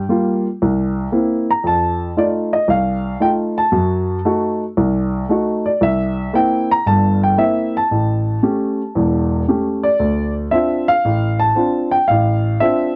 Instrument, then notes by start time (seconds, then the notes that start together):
grand piano
Already playing: G5
0.09 G3 A#3 F4
0.62 C2
1.12 A#3 C4 E4
1.51 A#5
1.64 F2 A5
2.17 A3 D#4 F4 D5
2.53 D#5
2.68 C2 F5
3.20 A3 D#4 F4 G5
3.58 A5
3.72 F#2 F#3
4.25 A3 D#4 F#4
4.78 C2
5.29 A3 D#4 F#4
5.66 D5
5.81 C2 E5
6.33 A#3 C4 E4 G5
6.71 A#5
6.86 G1 G2 A5
7.24 G5
7.37 A#3 C4 E4 E5
7.77 A5
7.91 A1
8.43 A3 C#4 G4
8.95 E1 E2
9.48 A3 C#4 G4
9.83 D5
9.99 D2
10.51 C4 D4 F4 E5
10.88 F5
11.05 A1
11.40 A5
11.55 C4 D4 F4
11.92 G5
12.08 A1 F5
12.60 C4 D4 F4 E5